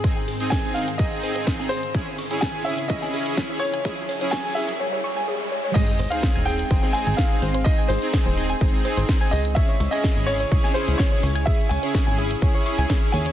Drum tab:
CC |----------------|----------------|----------------|x---------------|
HH |x-oxx-oxx-oxx-ox|x-oxx-oxx-oxx-ox|x-oxx-ox--------|x-oxx-oxx-oxx-ox|
SH |----------------|----------------|----------------|xxxxxxxxxxxxxxxx|
SD |----o-------oo--|----o----o--o---|----o-----------|----o----o--o---|
BD |o---o---o---o---|o---o---o---o---|o---o-----------|o---o---o---o---|

CC |----------------|----------------|----------------|
HH |x-oxx-oxx-oxx-ox|x-oxx-oxx-oxx-ox|x-oxx-oxx-oxx-ox|
SH |xxxxxxxxxxxxxxxx|xxxxxxxxxxxxxxxx|xxxxxxxxxxxxxxxx|
SD |----o-------o---|----o----o--o---|----o-------o---|
BD |o---o---o---o---|o---o---o---o---|o---o---o---o---|